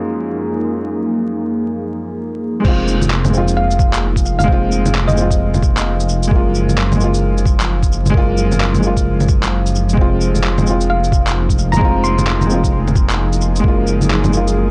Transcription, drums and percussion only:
2.65 kick loud
2.65 crash loud
2.88 cabasa medium
3.02 low bongo soft
3.02 shaker medium
3.10 clap loud
3.25 low bongo medium
3.25 shaker soft
3.34 cabasa medium
3.48 shaker medium
3.71 shaker soft
3.79 kick loud
3.79 cabasa medium
3.93 clap loud
3.93 shaker medium
4.16 kick medium
4.16 shaker soft
4.26 cabasa medium
4.40 low bongo medium
4.40 shaker medium
4.48 kick loud
4.72 cabasa medium
4.86 low bongo soft
4.86 shaker medium
4.95 clap loud
5.09 low bongo medium
5.09 shaker soft
5.17 cabasa medium
5.31 kick medium
5.31 shaker medium
5.54 low bongo soft
5.54 shaker soft
5.63 kick loud
5.63 cabasa medium
5.77 clap loud
5.77 shaker medium
6.00 shaker soft
6.09 cabasa medium
6.23 shaker medium
6.31 kick loud
6.55 cabasa medium
6.69 low bongo soft
6.69 shaker medium
6.78 clap loud
6.92 low bongo medium
6.92 shaker soft
7.00 cabasa medium
7.14 shaker medium
7.38 shaker soft
7.46 kick loud
7.46 cabasa medium
7.60 clap loud
7.60 shaker medium
7.83 kick medium
7.83 shaker soft
7.92 cabasa medium
8.06 low bongo medium
8.06 shaker medium
8.14 kick loud
8.37 cabasa medium
8.52 low bongo soft
8.52 shaker medium
8.60 clap loud
8.75 low bongo soft
8.75 shaker soft
8.83 cabasa medium
8.97 kick medium
8.97 shaker medium
9.20 low bongo soft
9.20 shaker soft
9.29 kick loud
9.29 cabasa medium
9.43 clap loud
9.43 shaker medium
9.66 shaker soft
9.75 cabasa medium
9.89 shaker medium
9.97 kick loud
10.21 cabasa medium
10.35 low bongo soft
10.35 shaker medium
10.44 clap loud
10.58 low bongo medium
10.58 shaker soft
10.67 cabasa medium
10.81 shaker medium
11.04 shaker soft
11.12 kick loud
11.12 cabasa medium
11.27 clap loud
11.27 shaker medium
11.49 kick medium
11.49 shaker soft
11.58 cabasa medium
11.73 low bongo medium
11.73 shaker medium
11.81 kick loud
12.04 cabasa medium
12.19 low bongo soft
12.19 shaker medium
12.27 clap loud
12.41 low bongo medium
12.41 shaker soft
12.50 cabasa medium
12.64 kick medium
12.64 shaker soft
12.87 low bongo soft
12.87 shaker soft
12.96 kick loud
12.96 cabasa medium
13.10 clap loud
13.10 shaker medium
13.33 shaker soft
13.41 cabasa medium
13.56 shaker medium
13.64 kick loud
13.87 cabasa medium
14.01 low bongo soft
14.01 shaker medium
14.10 clap loud
14.24 low bongo medium
14.24 shaker soft
14.33 cabasa medium
14.48 shaker medium

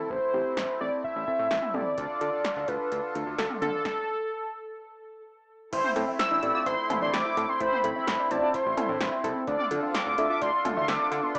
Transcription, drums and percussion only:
0.10 kick loud
0.57 snare loud
1.04 kick medium
1.27 kick medium
1.51 snare loud
1.63 mid tom medium
1.74 mid tom medium
1.98 kick loud
1.98 closed hi-hat medium
2.21 closed hi-hat medium
2.45 snare loud
2.45 closed hi-hat medium
2.68 kick medium
2.68 closed hi-hat medium
2.92 closed hi-hat medium
3.15 closed hi-hat medium
3.38 snare loud
3.38 closed hi-hat medium
3.50 mid tom medium
3.62 closed hi-hat medium
3.62 mid tom medium
3.85 kick loud
3.85 snare medium
5.73 kick loud
5.73 closed hi-hat medium
5.73 crash loud
5.84 mid tom medium
5.96 closed hi-hat medium
6.20 snare loud
6.20 closed hi-hat medium
6.43 closed hi-hat medium
6.66 kick medium
6.66 closed hi-hat medium
6.90 closed hi-hat medium
6.90 mid tom loud
6.90 cowbell medium
7.13 snare loud
7.13 closed hi-hat medium
7.37 closed hi-hat medium
7.60 kick loud
7.60 closed hi-hat medium
7.72 mid tom medium
7.84 closed hi-hat medium
8.07 snare loud
8.07 closed hi-hat medium
8.30 closed hi-hat medium
8.54 kick loud
8.54 closed hi-hat medium
8.77 closed hi-hat medium
8.77 mid tom loud
8.77 cowbell medium
9.01 snare loud
9.01 closed hi-hat medium
9.24 kick loud
9.24 closed hi-hat medium
9.48 kick loud
9.48 closed hi-hat medium
9.59 mid tom medium
9.71 closed hi-hat medium
9.95 snare loud
9.95 closed hi-hat medium
10.18 closed hi-hat medium
10.41 kick medium
10.41 closed hi-hat medium
10.65 closed hi-hat medium
10.65 mid tom loud
10.65 cowbell medium
10.88 snare loud
10.88 closed hi-hat medium
11.12 closed hi-hat medium
11.35 kick loud
11.35 closed hi-hat medium

